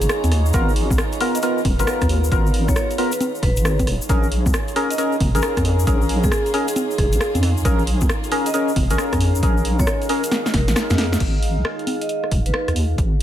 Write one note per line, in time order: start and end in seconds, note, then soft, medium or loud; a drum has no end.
0.00 0.08 G#1 loud
0.00 4.05 B3 medium
0.00 4.05 D#4 medium
0.00 4.08 D#4 medium
0.00 4.05 F4 medium
0.00 4.09 G#4 medium
0.00 0.07 G#4 medium
0.00 11.21 C#5 medium
0.00 4.10 F5 medium
0.00 4.05 A#5 medium
0.00 closed hi-hat medium
0.00 shaker medium
0.09 cross-stick loud
0.09 shaker medium
0.24 0.51 D#2 medium
0.24 closed hi-hat soft
0.24 high conga medium
0.24 shaker soft
0.32 cross-stick medium
0.32 open hi-hat loud
0.46 shaker medium
0.53 0.92 G#1 medium
0.53 0.72 B3 loud
0.53 0.72 F4 medium
0.53 0.72 A#4 loud
0.53 kick loud
0.53 closed hi-hat medium
0.53 shaker medium
0.69 shaker soft
0.76 open hi-hat loud
0.90 0.97 B1 loud
0.90 kick loud
0.90 high conga medium
0.90 shaker medium
0.98 cross-stick loud
1.12 closed hi-hat soft
1.12 shaker soft
1.20 1.38 B3 medium
1.20 1.38 F4 medium
1.20 1.38 A#4 loud
1.20 open hi-hat loud
1.35 1.40 D#5 medium
1.35 closed hi-hat medium
1.35 shaker medium
1.42 1.61 B3 medium
1.42 1.61 F4 medium
1.42 1.61 A#4 loud
1.42 1.52 D#5 medium
1.42 closed hi-hat medium
1.42 shaker medium
1.58 shaker soft
1.65 1.81 D#1 loud
1.65 kick loud
1.65 open hi-hat loud
1.65 high conga medium
1.79 1.86 G#1 loud
1.79 2.30 B3 medium
1.79 2.30 F4 medium
1.79 2.30 A#4 loud
1.79 1.84 B4 medium
1.79 closed hi-hat medium
1.79 shaker medium
1.87 1.96 B4 medium
1.87 cross-stick loud
1.87 shaker medium
2.01 2.29 D#2 medium
2.01 kick medium
2.01 cross-stick medium
2.01 closed hi-hat medium
2.01 high conga medium
2.01 shaker soft
2.09 open hi-hat loud
2.24 shaker medium
2.32 2.70 G#1 loud
2.32 2.96 B3 medium
2.32 2.96 F4 medium
2.32 2.96 A#4 medium
2.32 kick loud
2.32 closed hi-hat medium
2.32 shaker medium
2.46 shaker soft
2.54 open hi-hat loud
2.68 2.75 B1 loud
2.68 2.73 C#5 medium
2.68 kick loud
2.68 cross-stick medium
2.68 high conga medium
2.68 shaker medium
2.76 2.85 C#5 medium
2.76 cross-stick loud
2.76 shaker medium
2.91 closed hi-hat soft
2.91 shaker soft
2.98 3.11 B3 medium
2.98 3.11 F4 medium
2.98 3.11 A#4 loud
2.98 3.08 B4 medium
2.98 open hi-hat loud
3.12 3.18 B4 medium
3.12 closed hi-hat medium
3.12 shaker medium
3.21 closed hi-hat medium
3.21 high conga medium
3.21 shaker medium
3.35 shaker soft
3.43 3.59 D#1 loud
3.43 3.87 B4 medium
3.43 kick loud
3.43 cross-stick soft
3.43 open hi-hat loud
3.56 3.89 G#1 loud
3.56 closed hi-hat medium
3.56 shaker medium
3.65 cross-stick loud
3.65 shaker medium
3.79 kick medium
3.79 closed hi-hat medium
3.79 high conga medium
3.79 shaker soft
3.87 3.99 D#1 loud
3.87 cross-stick medium
3.87 open hi-hat loud
4.02 shaker medium
4.09 4.47 A#1 loud
4.09 11.16 A#3 medium
4.09 11.16 C#4 medium
4.09 4.27 C#4 loud
4.09 13.23 D#4 medium
4.09 11.16 F4 medium
4.09 11.16 G#4 medium
4.09 4.27 G#4 medium
4.09 4.27 A#4 loud
4.09 kick loud
4.09 closed hi-hat medium
4.09 shaker medium
4.23 shaker soft
4.32 open hi-hat loud
4.46 4.52 C#2 loud
4.46 13.23 G#4 medium
4.46 kick loud
4.46 high conga medium
4.46 shaker medium
4.53 cross-stick loud
4.53 shaker medium
4.68 closed hi-hat soft
4.68 shaker soft
4.76 4.94 C#4 medium
4.76 4.94 G#4 medium
4.76 4.94 A#4 loud
4.76 open hi-hat loud
4.90 4.95 D#5 medium
4.90 closed hi-hat medium
4.90 shaker medium
4.98 5.16 C#4 medium
4.98 5.16 G#4 medium
4.98 5.16 A#4 loud
4.98 5.08 D#5 medium
4.98 closed hi-hat medium
4.98 shaker medium
5.12 shaker soft
5.20 5.36 F1 loud
5.20 kick loud
5.20 open hi-hat loud
5.20 high conga medium
5.35 5.41 A#1 loud
5.35 5.85 C#4 medium
5.35 5.85 G#4 medium
5.35 5.85 A#4 loud
5.35 5.40 A#4 medium
5.35 closed hi-hat medium
5.35 shaker medium
5.41 5.52 A#4 medium
5.41 13.23 F5 medium
5.41 cross-stick loud
5.41 shaker medium
5.57 5.85 F2 medium
5.57 kick medium
5.57 cross-stick medium
5.57 closed hi-hat medium
5.57 high conga medium
5.57 shaker soft
5.65 open hi-hat loud
5.79 shaker medium
5.87 6.25 A#1 medium
5.87 6.52 C#4 medium
5.87 6.52 G#4 medium
5.87 6.52 A#4 medium
5.87 kick loud
5.87 closed hi-hat medium
5.87 shaker medium
6.02 shaker soft
6.09 open hi-hat loud
6.23 6.30 C#2 loud
6.23 6.29 G#4 medium
6.23 kick loud
6.23 cross-stick medium
6.23 high conga medium
6.23 shaker medium
6.32 6.41 G#4 medium
6.32 cross-stick loud
6.32 shaker medium
6.46 closed hi-hat soft
6.46 shaker soft
6.54 6.67 C#4 medium
6.54 6.67 G#4 medium
6.54 6.67 A#4 loud
6.54 open hi-hat loud
6.68 6.97 G#4 medium
6.68 closed hi-hat medium
6.68 shaker medium
6.76 closed hi-hat medium
6.76 high conga medium
6.76 shaker medium
6.91 shaker soft
6.98 7.14 F1 loud
6.98 7.08 G#4 medium
6.98 kick loud
6.98 cross-stick soft
6.98 open hi-hat loud
7.12 7.19 A#1 loud
7.12 7.18 G#4 medium
7.12 closed hi-hat medium
7.12 shaker medium
7.21 cross-stick loud
7.21 shaker medium
7.35 7.63 F2 medium
7.35 closed hi-hat medium
7.35 high conga medium
7.35 shaker soft
7.43 cross-stick medium
7.43 open hi-hat loud
7.57 shaker medium
7.65 8.03 A#1 medium
7.65 7.83 C#4 loud
7.65 7.83 G#4 medium
7.65 7.83 A#4 loud
7.65 kick loud
7.65 closed hi-hat medium
7.65 shaker medium
7.79 shaker soft
7.87 open hi-hat loud
8.01 8.08 C#2 loud
8.01 kick loud
8.01 high conga medium
8.01 shaker medium
8.09 cross-stick loud
8.09 shaker medium
8.24 closed hi-hat soft
8.24 shaker soft
8.32 8.49 C#4 medium
8.32 8.49 G#4 medium
8.32 8.49 A#4 loud
8.32 open hi-hat loud
8.46 8.51 D#5 medium
8.46 closed hi-hat medium
8.46 shaker medium
8.54 8.72 C#4 medium
8.54 8.72 G#4 medium
8.54 8.72 A#4 loud
8.54 8.63 D#5 medium
8.54 closed hi-hat medium
8.54 shaker medium
8.68 shaker soft
8.76 8.92 F1 loud
8.76 kick loud
8.76 open hi-hat loud
8.76 high conga medium
8.90 8.97 A#1 loud
8.90 9.41 C#4 medium
8.90 9.41 G#4 medium
8.90 8.95 A#4 medium
8.90 9.41 A#4 loud
8.90 closed hi-hat medium
8.90 shaker medium
8.98 9.08 A#4 medium
8.98 cross-stick loud
8.98 shaker medium
9.13 9.40 F2 medium
9.13 kick medium
9.13 cross-stick medium
9.13 closed hi-hat medium
9.13 high conga medium
9.13 shaker soft
9.21 open hi-hat loud
9.35 shaker medium
9.43 9.81 A#1 medium
9.43 10.08 C#4 medium
9.43 10.08 G#4 medium
9.43 10.08 A#4 medium
9.43 kick loud
9.43 closed hi-hat medium
9.43 shaker medium
9.57 shaker soft
9.65 open hi-hat loud
9.79 9.86 C#2 loud
9.79 9.84 C#5 medium
9.79 kick loud
9.79 cross-stick medium
9.79 high conga medium
9.79 shaker medium
9.87 9.96 C#5 medium
9.87 cross-stick loud
9.87 shaker medium
10.02 closed hi-hat soft
10.02 shaker soft
10.09 10.22 C#4 medium
10.09 10.22 G#4 medium
10.09 10.19 A#4 medium
10.09 10.22 A#4 loud
10.09 open hi-hat loud
10.24 10.29 A#4 medium
10.24 closed hi-hat medium
10.24 shaker medium
10.31 snare medium
10.31 closed hi-hat medium
10.31 high conga medium
10.31 shaker medium
10.46 snare medium
10.46 shaker soft
10.54 10.70 F1 loud
10.54 10.98 A#4 medium
10.54 kick loud
10.54 snare medium
10.54 open hi-hat loud
10.68 10.75 A#1 loud
10.68 snare medium
10.68 closed hi-hat medium
10.68 shaker medium
10.76 cross-stick loud
10.76 snare medium
10.76 shaker medium
10.90 11.18 F2 medium
10.90 snare medium
10.90 closed hi-hat medium
10.90 high conga medium
10.90 shaker soft
10.98 snare loud
10.98 open hi-hat loud
11.13 snare medium
11.13 shaker medium
11.20 11.58 G#1 medium
11.20 kick loud
11.20 closed hi-hat medium
11.20 crash medium
11.43 open hi-hat loud
11.57 11.63 B1 loud
11.65 cross-stick loud
11.79 closed hi-hat soft
11.87 open hi-hat loud
11.87 high conga medium
12.01 13.23 C#5 medium
12.01 12.07 D#5 medium
12.01 closed hi-hat medium
12.09 12.19 D#5 medium
12.09 closed hi-hat medium
12.24 cross-stick medium
12.31 12.47 D#1 loud
12.31 kick loud
12.31 open hi-hat loud
12.46 12.52 G#1 loud
12.46 12.51 B4 medium
12.46 closed hi-hat medium
12.54 12.63 B4 medium
12.54 cross-stick loud
12.68 12.96 D#2 medium
12.68 cross-stick medium
12.68 closed hi-hat medium
12.76 open hi-hat loud
12.98 13.23 G#1 medium
12.98 kick loud
12.98 closed hi-hat medium